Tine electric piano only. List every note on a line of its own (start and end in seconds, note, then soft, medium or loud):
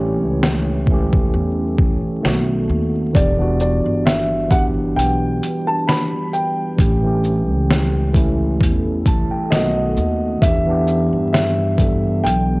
0.00 0.49 E3 loud
0.00 0.50 A3 medium
0.00 0.92 C#4 medium
0.00 0.94 G4 loud
0.89 2.10 E3 medium
0.89 2.11 A3 medium
0.89 2.11 C#4 medium
0.94 2.12 G4 loud
2.21 2.97 D#3 loud
2.21 2.98 A3 medium
2.21 2.99 B3 medium
2.26 2.99 F#4 loud
3.13 3.30 E3 loud
3.13 3.31 B3 medium
3.13 3.32 D4 medium
3.17 3.33 G4 medium
3.37 4.12 E3 medium
3.37 4.13 B3 medium
3.37 4.13 D4 medium
3.42 4.14 F#4 loud
4.48 5.71 E3 medium
4.48 5.72 B3 medium
4.48 5.73 D4 medium
4.52 5.73 G4 medium
6.76 6.94 E3 medium
6.76 6.95 A3 medium
6.76 6.96 C#4 medium
6.81 6.96 G4 medium
7.03 7.76 E3 medium
7.03 7.77 A3 medium
7.03 7.78 C#4 medium
7.07 7.79 G4 medium
8.13 9.36 E3 medium
8.13 9.36 A3 medium
8.13 9.37 C#4 medium
8.17 9.38 E4 loud
9.07 9.30 A5 medium
9.31 9.50 G5 medium
9.52 10.26 D#3 loud
9.52 10.27 A3 medium
9.52 10.27 B3 medium
9.52 9.76 F#5 medium
9.56 10.28 F#4 loud
9.78 10.39 D#5 medium
10.41 10.58 E3 medium
10.41 10.59 B3 medium
10.41 10.60 D4 medium
10.46 10.61 G4 medium
10.66 11.40 E3 medium
10.66 11.41 B3 medium
10.66 11.42 D4 loud
10.71 11.42 G4 medium
11.77 12.60 E3 medium
11.77 12.60 B3 medium
11.77 12.60 D4 medium
11.81 12.60 A4 medium